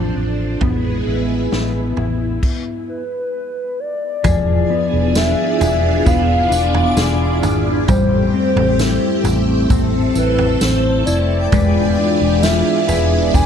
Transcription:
Already playing: A1 F3 C4 D4 A4
0.16 A1 D4
0.61 A1 G#3 B3 E4, kick, floor tom
1.07 A1 E4
1.52 A1 B3, snare
1.97 A1 E4, floor tom
2.43 kick, crash
2.89 B4
3.80 D5
4.24 E1 F3 B3 D4 E4 F4 G#4, kick, floor tom, tambourine
4.45 G#4
4.70 B3
4.93 E1
5.15 D4 E5, snare, tambourine
5.61 E1 G#4, floor tom, tambourine
6.06 E1 B3 F5, kick, floor tom, tambourine
6.12 D5
6.51 E1 D4, tambourine
6.74 floor tom
6.97 E1 G#4, snare, tambourine
7.42 G#1 D4, floor tom, tambourine
7.88 A1 G3 A3 C4 G4 C5, kick, floor tom, tambourine
8.34 C4
8.56 A1, floor tom
8.79 E4, snare, tambourine
9.18 E5
9.24 A1, floor tom, tambourine
9.70 A1 C4 A4, kick, floor tom, tambourine
10.15 A1 E4 B4, tambourine
10.39 floor tom
10.61 A1 C5, snare, tambourine
10.77 G5 B5
10.86 D6
11.06 F1 E4 D5, tambourine
11.52 E1 E3 G#3 B3 D4 F4 G#4 B4, kick, floor tom, tambourine
11.97 D4
12.21 E1 G#5
12.43 F4 E5, snare, tambourine
12.88 E1 B4, floor tom, tambourine
13.34 E1 D4 E5 G#5, kick, floor tom, tambourine

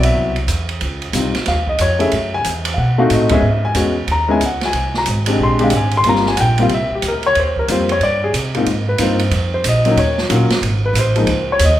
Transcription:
Already playing: B1 F#3 B3 C4 E4
0.03 E5, ride
0.15 C2
0.36 ride
0.47 E2, hi-hat pedal, ride
0.69 ride
0.81 C#2, ride
1.02 ride
1.13 C2 G3 C4 D#4 F4, hi-hat pedal, ride
1.34 muted upright bass stroke, snare, ride
1.46 D#2 F5, snare, ride
1.67 D#5, kick
1.78 F2 C#5, hi-hat pedal, ride
1.99 A3 C#4 E4 G#4 E5, ride
2.12 F#2, ride
2.34 G#5
2.44 E2, hi-hat pedal, ride
2.65 ride
2.74 B2 F5
2.78 F#5
2.98 A3 C4 D#4 F#4 F5
3.10 A2 D#5, hi-hat pedal, ride
3.29 G#3 B3 C#4 G#4 E5, kick, ride
3.42 G#2
3.65 G#5
3.74 E2 G#3 B3 C#4 F#4, hi-hat pedal, ride
4.07 D#2, ride
4.12 A#5
4.28 G#3 B3 C#4 E4 G#5
4.40 C#2, hi-hat pedal, ride
4.46 F#5
4.61 snare, ride
4.66 G#5
4.73 C2, ride
4.94 A#5, snare
5.06 G#1, hi-hat pedal, ride
5.26 G#3 C4 D4 G4, ride
5.38 A#1
5.43 C6
5.59 G#3 C4 D4 G4, ride
5.64 F5
5.70 G#1, hi-hat pedal, ride
5.76 G#5
5.91 ride
5.97 C6
6.04 G1 G3 A#3 C4 F4, ride
6.09 A#5
6.15 snare
6.26 G#5, snare
6.36 A#1 F#5, hi-hat pedal, ride
6.40 G5
6.58 G3 A#3 C4 F4, ride
6.63 F5
6.69 C2, ride
6.74 E5
6.91 muted upright bass stroke
6.95 G4
7.02 D2, hi-hat pedal, ride
7.08 A#4
7.23 C#5, ride
7.35 D#2, ride
7.39 C5
7.56 A#4, kick
7.68 F2 G3 A#3 C4 F4 C5, hi-hat pedal, ride
7.89 C#5, ride
8.00 G2 D5, ride
8.24 G#4
8.33 C3, hi-hat pedal, ride
8.55 G#2 A#3 C4 D#4 F4, ride
8.66 G#2, ride
8.89 B4
8.98 G2 A#3 C4 D#4 F4 C5, hi-hat pedal, ride
9.19 ride
9.31 F2, ride
9.54 C5
9.64 A#1, hi-hat pedal, ride
9.69 D#5
9.85 F#3 A#3 C#4 D#4, ride
9.96 D#2 C#5, ride
10.18 snare
10.29 A#1 F#3 A#3 C#4 F4, hi-hat pedal, ride
10.50 muted upright bass stroke, snare, ride
10.61 G#1, ride
10.86 B4
10.93 A1, hi-hat pedal, ride
10.99 C5
11.16 F3 G#3 A#3 D#4, ride
11.27 C#2, ride
11.52 C#5
11.59 D#2, hi-hat pedal, ride
11.65 D#5

